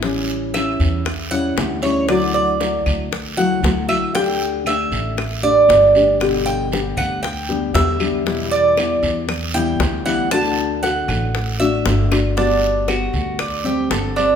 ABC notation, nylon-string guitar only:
X:1
M:4/4
L:1/8
Q:1/4=117
K:Dmix
V:1 name="Nylon-string guitar"
[E,G,^CE]2 [E,G,CE]2 z [G,CE] [E,G,CE] [G,CE] | [D,F,A,EF]2 [F,A,EF]2 z [F,A,EF] [F,A,EF] [F,A,EF] | [D,A,DG]2 [D,A,DG]2 z [A,DG] [D,A,DG] [A,DG] | [B,,D,G,B,G]2 [D,G,B,G]2 z [D,G,B,G] [D,G,B,G] [D,G,B,G] |
[B,,E,G,B,E]2 [E,G,B,E]2 z [E,G,B,E] [E,G,B,E] [E,G,B,E] | [D,A,DF]2 [D,A,DF]2 z [A,DF] [D,A,DF] [A,DF] | [G,B,F]2 [G,B,F]2 z [G,C] [D,G,C] [G,C] |]